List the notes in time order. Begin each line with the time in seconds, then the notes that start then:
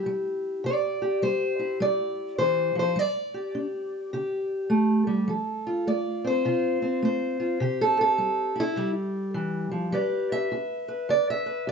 Already playing: E4 G4
0.06 G3
0.64 C3 D5
1.02 G4
1.22 G3 C5
1.59 E4
1.80 G3 D5
2.38 E3 C5
2.75 F3 C5
2.96 G3 D5
3.34 G4
3.55 D4
4.13 D3 G4
4.70 A3
5.07 G3
5.28 F3 A4
5.67 F4
5.87 A3 D5
6.24 C4 C5
6.45 C3 F4
6.82 C4
7.02 A3 C5
7.40 F4
7.60 C3 G4
7.81 A4
7.97 G4 A4
8.18 G3
8.56 E4
8.60 E4
8.76 C3 G3
9.34 E3
9.71 F3
9.92 G3 G4 B4 D5
10.32 E5
10.52 G4
10.88 B4
11.09 D3 D5
11.30 E5
11.46 B4
11.67 G4 D5